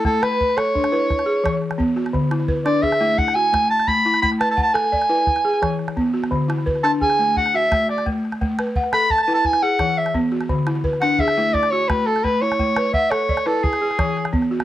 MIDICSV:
0, 0, Header, 1, 4, 480
1, 0, Start_track
1, 0, Tempo, 348635
1, 56, Time_signature, 12, 3, 24, 8
1, 20160, End_track
2, 0, Start_track
2, 0, Title_t, "Soprano saxophone"
2, 0, Program_c, 0, 64
2, 70, Note_on_c, 0, 69, 82
2, 311, Note_on_c, 0, 71, 80
2, 332, Note_off_c, 0, 69, 0
2, 788, Note_on_c, 0, 73, 74
2, 808, Note_off_c, 0, 71, 0
2, 2220, Note_off_c, 0, 73, 0
2, 3652, Note_on_c, 0, 74, 79
2, 3889, Note_on_c, 0, 76, 85
2, 3910, Note_off_c, 0, 74, 0
2, 4376, Note_on_c, 0, 78, 89
2, 4397, Note_off_c, 0, 76, 0
2, 4609, Note_on_c, 0, 80, 98
2, 4629, Note_off_c, 0, 78, 0
2, 5090, Note_off_c, 0, 80, 0
2, 5098, Note_on_c, 0, 81, 87
2, 5338, Note_on_c, 0, 83, 91
2, 5359, Note_off_c, 0, 81, 0
2, 5803, Note_off_c, 0, 83, 0
2, 5811, Note_on_c, 0, 83, 87
2, 5919, Note_off_c, 0, 83, 0
2, 6056, Note_on_c, 0, 81, 87
2, 6200, Note_off_c, 0, 81, 0
2, 6208, Note_on_c, 0, 81, 78
2, 6358, Note_off_c, 0, 81, 0
2, 6366, Note_on_c, 0, 81, 86
2, 6520, Note_on_c, 0, 80, 86
2, 6541, Note_off_c, 0, 81, 0
2, 7966, Note_off_c, 0, 80, 0
2, 9408, Note_on_c, 0, 81, 95
2, 9517, Note_off_c, 0, 81, 0
2, 9662, Note_on_c, 0, 80, 93
2, 10104, Note_off_c, 0, 80, 0
2, 10148, Note_on_c, 0, 78, 85
2, 10395, Note_on_c, 0, 76, 86
2, 10416, Note_off_c, 0, 78, 0
2, 10859, Note_off_c, 0, 76, 0
2, 10868, Note_on_c, 0, 74, 68
2, 11084, Note_off_c, 0, 74, 0
2, 12294, Note_on_c, 0, 83, 94
2, 12536, Note_on_c, 0, 81, 93
2, 12557, Note_off_c, 0, 83, 0
2, 12692, Note_off_c, 0, 81, 0
2, 12700, Note_on_c, 0, 81, 79
2, 12850, Note_off_c, 0, 81, 0
2, 12858, Note_on_c, 0, 81, 96
2, 13021, Note_on_c, 0, 80, 87
2, 13042, Note_off_c, 0, 81, 0
2, 13254, Note_on_c, 0, 78, 90
2, 13275, Note_off_c, 0, 80, 0
2, 13734, Note_on_c, 0, 76, 75
2, 13755, Note_off_c, 0, 78, 0
2, 13975, Note_off_c, 0, 76, 0
2, 15165, Note_on_c, 0, 78, 93
2, 15415, Note_on_c, 0, 76, 101
2, 15436, Note_off_c, 0, 78, 0
2, 15886, Note_on_c, 0, 74, 92
2, 15907, Note_off_c, 0, 76, 0
2, 16117, Note_on_c, 0, 73, 87
2, 16137, Note_off_c, 0, 74, 0
2, 16363, Note_on_c, 0, 71, 79
2, 16384, Note_off_c, 0, 73, 0
2, 16606, Note_on_c, 0, 69, 83
2, 16627, Note_off_c, 0, 71, 0
2, 16850, Note_on_c, 0, 71, 76
2, 16870, Note_off_c, 0, 69, 0
2, 17092, Note_on_c, 0, 73, 87
2, 17113, Note_off_c, 0, 71, 0
2, 17802, Note_off_c, 0, 73, 0
2, 17810, Note_on_c, 0, 76, 81
2, 18043, Note_on_c, 0, 73, 83
2, 18064, Note_off_c, 0, 76, 0
2, 18538, Note_on_c, 0, 69, 74
2, 18559, Note_off_c, 0, 73, 0
2, 18764, Note_on_c, 0, 68, 66
2, 18785, Note_off_c, 0, 69, 0
2, 19732, Note_off_c, 0, 68, 0
2, 20160, End_track
3, 0, Start_track
3, 0, Title_t, "Balafon"
3, 0, Program_c, 1, 12
3, 0, Note_on_c, 1, 64, 57
3, 67, Note_on_c, 1, 57, 82
3, 304, Note_on_c, 1, 71, 57
3, 305, Note_off_c, 1, 64, 0
3, 541, Note_off_c, 1, 57, 0
3, 783, Note_on_c, 1, 69, 75
3, 1019, Note_off_c, 1, 71, 0
3, 1032, Note_on_c, 1, 62, 59
3, 1259, Note_off_c, 1, 69, 0
3, 1267, Note_on_c, 1, 64, 70
3, 1267, Note_on_c, 1, 71, 58
3, 1501, Note_off_c, 1, 64, 0
3, 1734, Note_on_c, 1, 68, 66
3, 1741, Note_off_c, 1, 71, 0
3, 1743, Note_off_c, 1, 62, 0
3, 1980, Note_on_c, 1, 52, 76
3, 2452, Note_on_c, 1, 59, 77
3, 2454, Note_off_c, 1, 68, 0
3, 2457, Note_off_c, 1, 52, 0
3, 2703, Note_on_c, 1, 66, 59
3, 2933, Note_off_c, 1, 59, 0
3, 2937, Note_on_c, 1, 50, 81
3, 3178, Note_off_c, 1, 66, 0
3, 3182, Note_on_c, 1, 64, 58
3, 3415, Note_off_c, 1, 50, 0
3, 3420, Note_on_c, 1, 71, 58
3, 3654, Note_on_c, 1, 62, 76
3, 3895, Note_on_c, 1, 68, 57
3, 3897, Note_off_c, 1, 64, 0
3, 4133, Note_off_c, 1, 62, 0
3, 4136, Note_off_c, 1, 71, 0
3, 4136, Note_on_c, 1, 64, 59
3, 4137, Note_on_c, 1, 57, 74
3, 4614, Note_off_c, 1, 57, 0
3, 4614, Note_off_c, 1, 68, 0
3, 4620, Note_on_c, 1, 66, 61
3, 4854, Note_off_c, 1, 64, 0
3, 4854, Note_on_c, 1, 57, 69
3, 5321, Note_off_c, 1, 57, 0
3, 5336, Note_off_c, 1, 66, 0
3, 5338, Note_on_c, 1, 57, 75
3, 5581, Note_on_c, 1, 64, 63
3, 5802, Note_off_c, 1, 57, 0
3, 5818, Note_on_c, 1, 57, 81
3, 6057, Note_off_c, 1, 64, 0
3, 6064, Note_on_c, 1, 71, 59
3, 6292, Note_on_c, 1, 78, 57
3, 6295, Note_off_c, 1, 57, 0
3, 6529, Note_on_c, 1, 69, 77
3, 6776, Note_on_c, 1, 74, 58
3, 6778, Note_off_c, 1, 71, 0
3, 7010, Note_off_c, 1, 69, 0
3, 7012, Note_off_c, 1, 78, 0
3, 7014, Note_on_c, 1, 64, 74
3, 7016, Note_on_c, 1, 71, 63
3, 7253, Note_off_c, 1, 64, 0
3, 7494, Note_off_c, 1, 71, 0
3, 7494, Note_off_c, 1, 74, 0
3, 7500, Note_on_c, 1, 68, 63
3, 7738, Note_on_c, 1, 52, 67
3, 8214, Note_on_c, 1, 59, 70
3, 8215, Note_off_c, 1, 52, 0
3, 8216, Note_off_c, 1, 68, 0
3, 8447, Note_on_c, 1, 66, 59
3, 8686, Note_on_c, 1, 50, 80
3, 8693, Note_off_c, 1, 59, 0
3, 8925, Note_on_c, 1, 64, 58
3, 8929, Note_off_c, 1, 66, 0
3, 9169, Note_off_c, 1, 50, 0
3, 9172, Note_on_c, 1, 71, 61
3, 9414, Note_on_c, 1, 62, 73
3, 9649, Note_off_c, 1, 64, 0
3, 9658, Note_on_c, 1, 68, 57
3, 9892, Note_off_c, 1, 71, 0
3, 9893, Note_off_c, 1, 62, 0
3, 9901, Note_on_c, 1, 57, 71
3, 10376, Note_off_c, 1, 68, 0
3, 10377, Note_off_c, 1, 57, 0
3, 10386, Note_on_c, 1, 66, 62
3, 10620, Note_on_c, 1, 57, 70
3, 11084, Note_off_c, 1, 57, 0
3, 11100, Note_off_c, 1, 66, 0
3, 11100, Note_on_c, 1, 57, 74
3, 11564, Note_off_c, 1, 57, 0
3, 11581, Note_on_c, 1, 57, 81
3, 11828, Note_on_c, 1, 71, 59
3, 12058, Note_off_c, 1, 57, 0
3, 12063, Note_on_c, 1, 78, 61
3, 12303, Note_on_c, 1, 69, 77
3, 12542, Note_off_c, 1, 71, 0
3, 12773, Note_on_c, 1, 64, 74
3, 12773, Note_on_c, 1, 71, 60
3, 12779, Note_off_c, 1, 69, 0
3, 12779, Note_off_c, 1, 78, 0
3, 13014, Note_off_c, 1, 64, 0
3, 13254, Note_on_c, 1, 68, 64
3, 13255, Note_off_c, 1, 71, 0
3, 13492, Note_on_c, 1, 52, 72
3, 13968, Note_on_c, 1, 59, 74
3, 13974, Note_off_c, 1, 52, 0
3, 13975, Note_off_c, 1, 68, 0
3, 14204, Note_on_c, 1, 66, 56
3, 14448, Note_on_c, 1, 50, 80
3, 14453, Note_off_c, 1, 59, 0
3, 14688, Note_on_c, 1, 64, 59
3, 14691, Note_off_c, 1, 66, 0
3, 14926, Note_on_c, 1, 71, 62
3, 14933, Note_off_c, 1, 50, 0
3, 15180, Note_on_c, 1, 62, 77
3, 15413, Note_off_c, 1, 64, 0
3, 15418, Note_on_c, 1, 68, 60
3, 15653, Note_off_c, 1, 71, 0
3, 15658, Note_on_c, 1, 64, 62
3, 15659, Note_off_c, 1, 62, 0
3, 15663, Note_on_c, 1, 57, 72
3, 16138, Note_off_c, 1, 68, 0
3, 16141, Note_off_c, 1, 57, 0
3, 16145, Note_on_c, 1, 66, 63
3, 16379, Note_off_c, 1, 64, 0
3, 16382, Note_on_c, 1, 57, 72
3, 16838, Note_off_c, 1, 57, 0
3, 16855, Note_on_c, 1, 57, 77
3, 16862, Note_off_c, 1, 66, 0
3, 17099, Note_on_c, 1, 64, 61
3, 17327, Note_off_c, 1, 57, 0
3, 17344, Note_on_c, 1, 57, 77
3, 17580, Note_off_c, 1, 64, 0
3, 17583, Note_on_c, 1, 71, 60
3, 17820, Note_on_c, 1, 78, 58
3, 17822, Note_off_c, 1, 57, 0
3, 18055, Note_on_c, 1, 69, 72
3, 18300, Note_on_c, 1, 74, 59
3, 18302, Note_off_c, 1, 71, 0
3, 18537, Note_off_c, 1, 69, 0
3, 18539, Note_on_c, 1, 64, 73
3, 18540, Note_on_c, 1, 71, 62
3, 18541, Note_off_c, 1, 78, 0
3, 18780, Note_off_c, 1, 64, 0
3, 19020, Note_off_c, 1, 71, 0
3, 19020, Note_off_c, 1, 74, 0
3, 19020, Note_on_c, 1, 68, 62
3, 19256, Note_on_c, 1, 52, 71
3, 19726, Note_on_c, 1, 59, 72
3, 19738, Note_off_c, 1, 52, 0
3, 19740, Note_off_c, 1, 68, 0
3, 19978, Note_on_c, 1, 66, 58
3, 20160, Note_off_c, 1, 59, 0
3, 20160, Note_off_c, 1, 66, 0
3, 20160, End_track
4, 0, Start_track
4, 0, Title_t, "Calabash"
4, 65, Note_on_c, 9, 36, 58
4, 65, Note_on_c, 9, 38, 19
4, 203, Note_off_c, 9, 36, 0
4, 203, Note_off_c, 9, 38, 0
4, 314, Note_on_c, 9, 38, 58
4, 431, Note_off_c, 9, 38, 0
4, 431, Note_on_c, 9, 38, 19
4, 559, Note_on_c, 9, 36, 62
4, 569, Note_off_c, 9, 38, 0
4, 683, Note_on_c, 9, 38, 20
4, 697, Note_off_c, 9, 36, 0
4, 794, Note_off_c, 9, 38, 0
4, 794, Note_on_c, 9, 38, 56
4, 932, Note_off_c, 9, 38, 0
4, 1038, Note_on_c, 9, 36, 54
4, 1156, Note_on_c, 9, 38, 48
4, 1176, Note_off_c, 9, 36, 0
4, 1288, Note_off_c, 9, 38, 0
4, 1288, Note_on_c, 9, 38, 17
4, 1426, Note_off_c, 9, 38, 0
4, 1518, Note_on_c, 9, 36, 57
4, 1518, Note_on_c, 9, 38, 18
4, 1637, Note_off_c, 9, 38, 0
4, 1637, Note_on_c, 9, 38, 42
4, 1656, Note_off_c, 9, 36, 0
4, 1775, Note_off_c, 9, 38, 0
4, 2004, Note_on_c, 9, 36, 58
4, 2004, Note_on_c, 9, 38, 57
4, 2142, Note_off_c, 9, 36, 0
4, 2142, Note_off_c, 9, 38, 0
4, 2228, Note_on_c, 9, 38, 17
4, 2351, Note_off_c, 9, 38, 0
4, 2351, Note_on_c, 9, 38, 43
4, 2478, Note_on_c, 9, 36, 55
4, 2489, Note_off_c, 9, 38, 0
4, 2616, Note_off_c, 9, 36, 0
4, 2715, Note_on_c, 9, 38, 17
4, 2838, Note_off_c, 9, 38, 0
4, 2838, Note_on_c, 9, 38, 42
4, 2950, Note_off_c, 9, 38, 0
4, 2950, Note_on_c, 9, 36, 52
4, 2950, Note_on_c, 9, 38, 16
4, 3088, Note_off_c, 9, 36, 0
4, 3088, Note_off_c, 9, 38, 0
4, 3184, Note_on_c, 9, 38, 53
4, 3306, Note_off_c, 9, 38, 0
4, 3306, Note_on_c, 9, 38, 18
4, 3418, Note_on_c, 9, 36, 58
4, 3444, Note_off_c, 9, 38, 0
4, 3555, Note_off_c, 9, 36, 0
4, 3660, Note_on_c, 9, 38, 51
4, 3797, Note_off_c, 9, 38, 0
4, 3897, Note_on_c, 9, 36, 53
4, 4025, Note_on_c, 9, 38, 43
4, 4035, Note_off_c, 9, 36, 0
4, 4149, Note_off_c, 9, 38, 0
4, 4149, Note_on_c, 9, 38, 18
4, 4286, Note_off_c, 9, 38, 0
4, 4384, Note_on_c, 9, 36, 60
4, 4384, Note_on_c, 9, 38, 19
4, 4518, Note_off_c, 9, 38, 0
4, 4518, Note_on_c, 9, 38, 43
4, 4522, Note_off_c, 9, 36, 0
4, 4656, Note_off_c, 9, 38, 0
4, 4872, Note_on_c, 9, 36, 59
4, 4872, Note_on_c, 9, 38, 60
4, 5010, Note_off_c, 9, 36, 0
4, 5010, Note_off_c, 9, 38, 0
4, 5109, Note_on_c, 9, 38, 18
4, 5225, Note_off_c, 9, 38, 0
4, 5225, Note_on_c, 9, 38, 46
4, 5337, Note_on_c, 9, 36, 59
4, 5363, Note_off_c, 9, 38, 0
4, 5474, Note_off_c, 9, 36, 0
4, 5591, Note_on_c, 9, 38, 19
4, 5697, Note_off_c, 9, 38, 0
4, 5697, Note_on_c, 9, 38, 46
4, 5827, Note_off_c, 9, 38, 0
4, 5827, Note_on_c, 9, 36, 61
4, 5827, Note_on_c, 9, 38, 18
4, 5944, Note_off_c, 9, 38, 0
4, 5944, Note_on_c, 9, 38, 18
4, 5965, Note_off_c, 9, 36, 0
4, 6070, Note_off_c, 9, 38, 0
4, 6070, Note_on_c, 9, 38, 60
4, 6208, Note_off_c, 9, 38, 0
4, 6303, Note_on_c, 9, 36, 65
4, 6441, Note_off_c, 9, 36, 0
4, 6545, Note_on_c, 9, 38, 55
4, 6668, Note_off_c, 9, 38, 0
4, 6668, Note_on_c, 9, 38, 19
4, 6789, Note_off_c, 9, 38, 0
4, 6789, Note_on_c, 9, 36, 53
4, 6789, Note_on_c, 9, 38, 17
4, 6906, Note_off_c, 9, 38, 0
4, 6906, Note_on_c, 9, 38, 47
4, 6927, Note_off_c, 9, 36, 0
4, 7044, Note_off_c, 9, 38, 0
4, 7256, Note_on_c, 9, 36, 58
4, 7256, Note_on_c, 9, 38, 19
4, 7379, Note_off_c, 9, 38, 0
4, 7379, Note_on_c, 9, 38, 42
4, 7394, Note_off_c, 9, 36, 0
4, 7501, Note_off_c, 9, 38, 0
4, 7501, Note_on_c, 9, 38, 18
4, 7622, Note_off_c, 9, 38, 0
4, 7622, Note_on_c, 9, 38, 18
4, 7747, Note_off_c, 9, 38, 0
4, 7747, Note_on_c, 9, 36, 55
4, 7747, Note_on_c, 9, 38, 58
4, 7884, Note_off_c, 9, 36, 0
4, 7884, Note_off_c, 9, 38, 0
4, 7974, Note_on_c, 9, 38, 17
4, 8095, Note_off_c, 9, 38, 0
4, 8095, Note_on_c, 9, 38, 44
4, 8221, Note_off_c, 9, 38, 0
4, 8221, Note_on_c, 9, 36, 53
4, 8221, Note_on_c, 9, 38, 17
4, 8339, Note_off_c, 9, 38, 0
4, 8339, Note_on_c, 9, 38, 17
4, 8359, Note_off_c, 9, 36, 0
4, 8456, Note_off_c, 9, 38, 0
4, 8456, Note_on_c, 9, 38, 16
4, 8585, Note_off_c, 9, 38, 0
4, 8585, Note_on_c, 9, 38, 40
4, 8698, Note_off_c, 9, 38, 0
4, 8698, Note_on_c, 9, 36, 52
4, 8698, Note_on_c, 9, 38, 18
4, 8836, Note_off_c, 9, 36, 0
4, 8836, Note_off_c, 9, 38, 0
4, 8946, Note_on_c, 9, 38, 54
4, 9066, Note_off_c, 9, 38, 0
4, 9066, Note_on_c, 9, 38, 16
4, 9184, Note_on_c, 9, 36, 57
4, 9204, Note_off_c, 9, 38, 0
4, 9300, Note_on_c, 9, 38, 18
4, 9322, Note_off_c, 9, 36, 0
4, 9428, Note_off_c, 9, 38, 0
4, 9428, Note_on_c, 9, 38, 51
4, 9565, Note_off_c, 9, 38, 0
4, 9660, Note_on_c, 9, 36, 52
4, 9772, Note_on_c, 9, 38, 46
4, 9797, Note_off_c, 9, 36, 0
4, 9898, Note_off_c, 9, 38, 0
4, 9898, Note_on_c, 9, 38, 18
4, 10036, Note_off_c, 9, 38, 0
4, 10143, Note_on_c, 9, 36, 55
4, 10143, Note_on_c, 9, 38, 18
4, 10268, Note_off_c, 9, 38, 0
4, 10268, Note_on_c, 9, 38, 43
4, 10281, Note_off_c, 9, 36, 0
4, 10405, Note_off_c, 9, 38, 0
4, 10627, Note_on_c, 9, 36, 62
4, 10627, Note_on_c, 9, 38, 58
4, 10764, Note_off_c, 9, 36, 0
4, 10764, Note_off_c, 9, 38, 0
4, 10867, Note_on_c, 9, 38, 19
4, 10988, Note_off_c, 9, 38, 0
4, 10988, Note_on_c, 9, 38, 44
4, 11104, Note_on_c, 9, 36, 56
4, 11126, Note_off_c, 9, 38, 0
4, 11241, Note_off_c, 9, 36, 0
4, 11357, Note_on_c, 9, 38, 18
4, 11459, Note_off_c, 9, 38, 0
4, 11459, Note_on_c, 9, 38, 48
4, 11586, Note_off_c, 9, 38, 0
4, 11586, Note_on_c, 9, 36, 58
4, 11586, Note_on_c, 9, 38, 20
4, 11724, Note_off_c, 9, 36, 0
4, 11724, Note_off_c, 9, 38, 0
4, 11821, Note_on_c, 9, 38, 61
4, 11934, Note_off_c, 9, 38, 0
4, 11934, Note_on_c, 9, 38, 19
4, 12056, Note_on_c, 9, 36, 62
4, 12072, Note_off_c, 9, 38, 0
4, 12165, Note_on_c, 9, 38, 20
4, 12194, Note_off_c, 9, 36, 0
4, 12292, Note_off_c, 9, 38, 0
4, 12292, Note_on_c, 9, 38, 57
4, 12429, Note_off_c, 9, 38, 0
4, 12532, Note_on_c, 9, 36, 60
4, 12643, Note_on_c, 9, 38, 50
4, 12670, Note_off_c, 9, 36, 0
4, 12774, Note_off_c, 9, 38, 0
4, 12774, Note_on_c, 9, 38, 19
4, 12911, Note_off_c, 9, 38, 0
4, 13008, Note_on_c, 9, 36, 59
4, 13008, Note_on_c, 9, 38, 19
4, 13127, Note_off_c, 9, 38, 0
4, 13127, Note_on_c, 9, 38, 43
4, 13145, Note_off_c, 9, 36, 0
4, 13265, Note_off_c, 9, 38, 0
4, 13484, Note_on_c, 9, 36, 58
4, 13484, Note_on_c, 9, 38, 57
4, 13622, Note_off_c, 9, 36, 0
4, 13622, Note_off_c, 9, 38, 0
4, 13736, Note_on_c, 9, 38, 17
4, 13851, Note_off_c, 9, 38, 0
4, 13851, Note_on_c, 9, 38, 43
4, 13966, Note_on_c, 9, 36, 54
4, 13988, Note_off_c, 9, 38, 0
4, 14104, Note_off_c, 9, 36, 0
4, 14206, Note_on_c, 9, 38, 16
4, 14326, Note_off_c, 9, 38, 0
4, 14326, Note_on_c, 9, 38, 44
4, 14447, Note_off_c, 9, 38, 0
4, 14447, Note_on_c, 9, 36, 54
4, 14447, Note_on_c, 9, 38, 17
4, 14585, Note_off_c, 9, 36, 0
4, 14585, Note_off_c, 9, 38, 0
4, 14685, Note_on_c, 9, 38, 54
4, 14805, Note_off_c, 9, 38, 0
4, 14805, Note_on_c, 9, 38, 18
4, 14924, Note_on_c, 9, 36, 62
4, 14942, Note_off_c, 9, 38, 0
4, 15050, Note_on_c, 9, 38, 18
4, 15062, Note_off_c, 9, 36, 0
4, 15167, Note_off_c, 9, 38, 0
4, 15167, Note_on_c, 9, 38, 52
4, 15305, Note_off_c, 9, 38, 0
4, 15402, Note_on_c, 9, 36, 53
4, 15528, Note_on_c, 9, 38, 45
4, 15539, Note_off_c, 9, 36, 0
4, 15665, Note_off_c, 9, 38, 0
4, 15892, Note_on_c, 9, 36, 58
4, 15892, Note_on_c, 9, 38, 18
4, 16012, Note_off_c, 9, 38, 0
4, 16012, Note_on_c, 9, 38, 43
4, 16030, Note_off_c, 9, 36, 0
4, 16149, Note_off_c, 9, 38, 0
4, 16381, Note_on_c, 9, 36, 56
4, 16381, Note_on_c, 9, 38, 55
4, 16519, Note_off_c, 9, 36, 0
4, 16519, Note_off_c, 9, 38, 0
4, 16626, Note_on_c, 9, 38, 17
4, 16741, Note_off_c, 9, 38, 0
4, 16741, Note_on_c, 9, 38, 43
4, 16859, Note_on_c, 9, 36, 53
4, 16879, Note_off_c, 9, 38, 0
4, 16997, Note_off_c, 9, 36, 0
4, 17109, Note_on_c, 9, 38, 17
4, 17235, Note_off_c, 9, 38, 0
4, 17235, Note_on_c, 9, 38, 45
4, 17340, Note_off_c, 9, 38, 0
4, 17340, Note_on_c, 9, 36, 57
4, 17340, Note_on_c, 9, 38, 18
4, 17478, Note_off_c, 9, 36, 0
4, 17478, Note_off_c, 9, 38, 0
4, 17576, Note_on_c, 9, 38, 59
4, 17700, Note_off_c, 9, 38, 0
4, 17700, Note_on_c, 9, 38, 17
4, 17814, Note_on_c, 9, 36, 60
4, 17838, Note_off_c, 9, 38, 0
4, 17952, Note_off_c, 9, 36, 0
4, 18059, Note_on_c, 9, 38, 56
4, 18196, Note_off_c, 9, 38, 0
4, 18300, Note_on_c, 9, 36, 58
4, 18412, Note_on_c, 9, 38, 49
4, 18438, Note_off_c, 9, 36, 0
4, 18530, Note_off_c, 9, 38, 0
4, 18530, Note_on_c, 9, 38, 19
4, 18668, Note_off_c, 9, 38, 0
4, 18778, Note_on_c, 9, 36, 65
4, 18901, Note_on_c, 9, 38, 46
4, 18916, Note_off_c, 9, 36, 0
4, 19039, Note_off_c, 9, 38, 0
4, 19149, Note_on_c, 9, 38, 21
4, 19259, Note_off_c, 9, 38, 0
4, 19259, Note_on_c, 9, 36, 67
4, 19259, Note_on_c, 9, 38, 61
4, 19397, Note_off_c, 9, 36, 0
4, 19397, Note_off_c, 9, 38, 0
4, 19509, Note_on_c, 9, 38, 20
4, 19620, Note_off_c, 9, 38, 0
4, 19620, Note_on_c, 9, 38, 46
4, 19736, Note_on_c, 9, 36, 63
4, 19758, Note_off_c, 9, 38, 0
4, 19856, Note_on_c, 9, 38, 21
4, 19873, Note_off_c, 9, 36, 0
4, 19994, Note_off_c, 9, 38, 0
4, 20102, Note_on_c, 9, 38, 52
4, 20160, Note_off_c, 9, 38, 0
4, 20160, End_track
0, 0, End_of_file